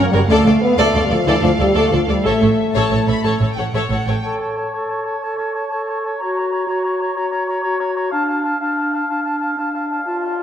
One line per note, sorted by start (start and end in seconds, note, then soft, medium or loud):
0.00 0.26 F#5 soft
0.05 0.08 A#3 medium
0.12 0.20 F#1 soft
0.12 0.19 F#2 medium
0.12 0.19 G3 medium
0.12 0.20 A#4 medium
0.12 0.19 C#5 medium
0.29 0.35 D2 medium
0.29 0.36 D2 medium
0.29 0.61 A3 medium
0.29 0.45 A4 medium
0.29 0.44 D5 medium
0.29 2.25 F5 medium
0.44 0.51 D2 medium
0.44 0.52 D2 soft
0.44 0.53 A4 soft
0.44 0.52 D5 soft
0.61 0.77 B3 medium
0.77 0.84 D2 medium
0.77 1.02 A3 medium
0.77 0.94 A4 medium
0.77 0.93 D5 medium
0.94 1.01 D2 medium
0.94 1.01 D2 soft
0.94 1.02 A4 soft
0.94 1.02 D5 soft
1.04 1.07 G3 medium
1.10 1.17 D2 soft
1.10 1.26 F3 medium
1.10 1.17 A4 soft
1.10 1.18 D5 soft
1.27 1.33 D2 medium
1.27 1.34 E3 medium
1.27 1.40 A4 medium
1.27 1.42 D5 medium
1.41 1.49 D2 soft
1.41 1.50 D2 medium
1.41 1.50 F3 medium
1.41 1.48 A4 soft
1.41 1.50 D5 soft
1.58 1.66 D2 medium
1.58 1.67 D2 soft
1.58 1.75 G3 medium
1.58 1.66 A4 medium
1.58 1.66 D5 soft
1.75 1.82 D2 medium
1.75 1.83 D2 medium
1.75 1.92 A3 medium
1.75 1.90 A4 medium
1.75 1.91 D5 medium
1.91 1.99 D2 soft
1.91 2.00 F3 medium
1.91 1.98 A4 soft
1.91 1.99 D5 soft
2.07 2.15 D2 soft
2.07 2.16 D2 soft
2.07 2.25 G3 medium
2.07 2.14 A4 soft
2.07 2.16 D5 soft
2.23 2.32 A1 medium
2.23 2.31 A2 medium
2.23 3.75 A3 medium
2.23 2.40 A4 medium
2.23 2.40 C#5 soft
2.23 2.71 E5 soft
2.41 2.49 A1 soft
2.41 2.48 A2 soft
2.41 2.48 A4 soft
2.41 2.48 C#5 soft
2.75 2.82 A1 soft
2.75 2.82 A2 soft
2.75 2.90 A4 medium
2.75 2.90 C#5 soft
2.75 3.06 A5 soft
2.91 2.98 A1 soft
2.91 2.98 A2 soft
2.91 2.98 A4 soft
2.91 2.98 C#5 soft
3.07 3.15 A1 soft
3.07 3.15 A2 soft
3.07 3.14 A4 soft
3.07 3.14 C#5 soft
3.07 3.25 B5 soft
3.24 3.31 A1 soft
3.24 3.31 A2 soft
3.24 3.40 A4 soft
3.24 3.40 C#5 soft
3.24 3.32 A5 soft
3.41 3.48 A1 soft
3.41 3.48 A2 soft
3.41 3.48 A4 soft
3.41 3.48 C#5 soft
3.51 3.59 G5 soft
3.57 3.64 A1 soft
3.57 3.64 A2 soft
3.57 3.64 A4 soft
3.57 3.64 C#5 soft
3.57 3.75 F#5 soft
3.74 3.81 A1 soft
3.74 3.81 A2 soft
3.74 3.89 A4 soft
3.74 3.90 C#5 soft
3.74 3.81 E5 soft
3.90 3.97 A1 soft
3.90 3.97 A2 soft
3.90 3.97 A4 soft
3.90 3.98 C#5 soft
3.90 4.07 F#5 soft
4.07 4.14 A1 soft
4.07 4.13 A2 soft
4.07 4.16 A4 soft
4.07 4.14 C#5 soft
4.07 4.24 G5 soft
4.24 4.67 A4 soft
4.24 4.40 C#5 soft
4.24 4.39 A5 soft
4.40 4.56 C#5 soft
4.40 4.54 A5 soft
4.55 4.73 C#5 soft
4.55 4.71 A5 soft
4.72 5.16 A4 soft
4.72 4.90 C#5 soft
4.72 4.87 A5 soft
4.87 5.05 C#5 soft
4.87 5.03 A5 soft
5.04 5.22 C#5 soft
5.04 5.20 A5 soft
5.20 5.65 A4 soft
5.20 5.37 C#5 soft
5.20 5.37 A5 soft
5.38 5.54 C#5 soft
5.38 5.53 A5 soft
5.54 5.71 C#5 soft
5.54 5.68 A5 soft
5.68 6.14 A4 soft
5.68 5.87 C#5 soft
5.68 5.85 A5 soft
5.86 6.04 C#5 soft
5.86 6.02 A5 soft
6.02 6.20 C#5 soft
6.02 6.17 A5 soft
6.18 6.63 F#4 soft
6.18 6.34 A#5 soft
6.22 6.37 C#5 soft
6.35 6.49 A#5 soft
6.39 6.52 C#5 soft
6.50 6.68 C#5 soft
6.50 6.66 A#5 soft
6.66 7.10 F#4 medium
6.66 6.84 C#5 soft
6.66 6.82 A#5 soft
6.82 7.00 C#5 soft
6.82 6.98 A#5 soft
6.99 7.16 C#5 soft
6.99 7.15 A#5 soft
7.15 7.59 F#4 soft
7.15 7.31 C#5 soft
7.15 7.29 A#5 soft
7.30 7.48 C#5 soft
7.30 7.47 A#5 soft
7.47 7.62 C#5 soft
7.47 7.62 A#5 soft
7.62 8.07 F#4 soft
7.62 7.79 C#5 medium
7.62 7.79 A#5 medium
7.79 7.96 C#5 soft
7.79 7.94 A#5 soft
7.95 8.11 C#5 soft
7.95 8.11 A#5 soft
8.11 8.55 D4 medium
8.11 8.28 F5 soft
8.11 8.26 A5 medium
8.27 8.43 F5 soft
8.27 8.42 A5 soft
8.43 8.60 F5 soft
8.43 8.60 A5 soft
8.61 9.03 D4 medium
8.61 8.77 F5 soft
8.61 8.76 A5 soft
8.77 8.94 F5 soft
8.77 8.91 A5 soft
8.92 9.10 F5 soft
8.92 9.08 A5 soft
9.09 9.53 D4 medium
9.09 9.26 F5 soft
9.09 9.23 A5 soft
9.24 9.41 F5 soft
9.24 9.39 A5 soft
9.40 9.58 F5 soft
9.40 9.55 A5 soft
9.55 10.01 D4 soft
9.55 9.74 F5 soft
9.55 9.72 A5 soft
9.73 9.91 F5 soft
9.73 9.89 A5 soft
9.90 10.08 F5 soft
9.90 10.04 A5 soft
10.05 10.43 F4 soft
10.05 10.24 F5 soft
10.05 10.20 A5 soft
10.20 10.40 F5 soft
10.20 10.38 A5 soft
10.39 10.43 A5 soft